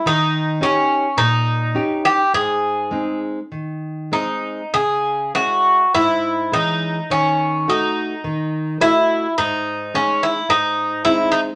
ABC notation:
X:1
M:4/4
L:1/8
Q:1/4=104
K:G#phr
V:1 name="Bouzouki"
D2 C2 D3 =G | G3 z3 D2 | G2 F2 E2 D2 | C2 D4 E2 |
D2 C E D2 E D |]
V:2 name="Nylon-string guitar"
D,2 [CD=G]2 ^A,,2 [CDG]2 | G,,2 [G,^B,D]2 D,2 [G,B,D]2 | C,2 [G,CE]2 G,,2 [E,G,C]2 | D,2 [A,DF]2 D,2 [A,Fd]2 |
G,,2 [G,CD]2 G,,2 [G,^B,D]2 |]